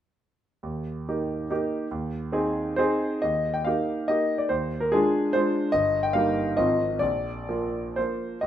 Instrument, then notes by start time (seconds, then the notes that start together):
grand piano
0.63 D#2
1.09 A#3 D#4 G4
1.50 A#3 D#4 G4
1.91 D#2
2.32 C4 D#4 G#4
2.76 C4 D#4 G#4 C5
3.22 D#2 D#5
3.54 G5
3.65 A#3 D#4 G4 F5
4.08 A#3 D#4 G4 D#5
4.38 D5
4.49 D#2 C5
4.80 A#4
4.92 G#3 D4 F4 G#4
5.33 G#3 D4 F4 C5
5.72 G1 D#5
6.03 G5
6.13 G3 A#3 D#4 F5
6.57 G#1 F3 C4 F4 D#5
6.99 A#1 D5
7.49 F3 A#3 F4
7.96 F3 A#3 F4 C5
8.41 D#2 D#5